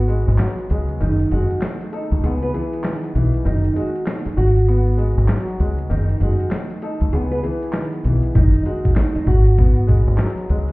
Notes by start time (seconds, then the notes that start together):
Already playing: G#1 B3 F#4
0.08 G#3, closed hi-hat
0.28 G#1, closed hi-hat
0.38 F#3, snare, clap, closed hi-hat
0.58 closed hi-hat
0.70 C#2 G#3, closed hi-hat
0.89 closed hi-hat
1.00 F#1 D#3 D#4, closed hi-hat
1.20 closed hi-hat
1.31 F#1 G#3 F#4, closed hi-hat
1.51 closed hi-hat
1.62 A3, snare, clap, closed hi-hat
1.81 closed hi-hat
1.92 D#4 A4, closed hi-hat
2.12 C#2, closed hi-hat
2.23 C#2 B3 G#4, closed hi-hat
2.42 B4, closed hi-hat
2.54 E3 G#4, closed hi-hat
2.73 closed hi-hat
2.84 D#3, snare, clap, closed hi-hat
3.04 closed hi-hat
3.15 B1 E3, closed hi-hat
3.34 closed hi-hat
3.45 F#1 D#3 D#4, closed hi-hat
3.65 closed hi-hat
3.76 G#3 F#4, closed hi-hat
3.96 closed hi-hat
4.06 A3 D#4, snare, clap, closed hi-hat
4.25 D#4, muted fingered electric bass stroke, closed hi-hat
4.37 G#1 F#4, closed hi-hat
4.56 closed hi-hat
4.68 B3, closed hi-hat
4.87 closed hi-hat
4.97 G#3, closed hi-hat
5.18 G#1, closed hi-hat
5.28 F#3, snare, clap, closed hi-hat
5.48 closed hi-hat
5.60 C#2 G#3, closed hi-hat
5.78 closed hi-hat
5.90 F#1 D#3 D#4, closed hi-hat
6.09 closed hi-hat
6.20 F#1 G#3 F#4, closed hi-hat
6.40 closed hi-hat
6.51 A3, snare, clap, closed hi-hat
6.70 closed hi-hat
6.82 D#4 A4, closed hi-hat
7.01 C#2, closed hi-hat
7.13 C#2 B3 G#4, closed hi-hat
7.31 B4, closed hi-hat
7.43 E3 G#4, closed hi-hat
7.63 closed hi-hat
7.73 D#3, snare, clap, closed hi-hat
7.93 closed hi-hat
8.04 B1 E3, closed hi-hat
8.23 closed hi-hat
8.35 F#1 D#3 D#4, kick, closed hi-hat
8.54 closed hi-hat
8.66 G#3 F#4, closed hi-hat
8.85 kick, closed hi-hat
8.96 A3 D#4, snare, clap, closed hi-hat
9.15 D#4, muted fingered electric bass stroke, closed hi-hat
9.27 G#1 F#4, kick, closed hi-hat
9.46 closed hi-hat
9.58 B3, kick, closed hi-hat
9.77 closed hi-hat
9.87 G#3, kick, closed hi-hat
10.08 G#1, closed hi-hat
10.18 F#3, snare, clap, closed hi-hat
10.38 closed hi-hat
10.50 C#2 G#3, closed hi-hat
10.68 closed hi-hat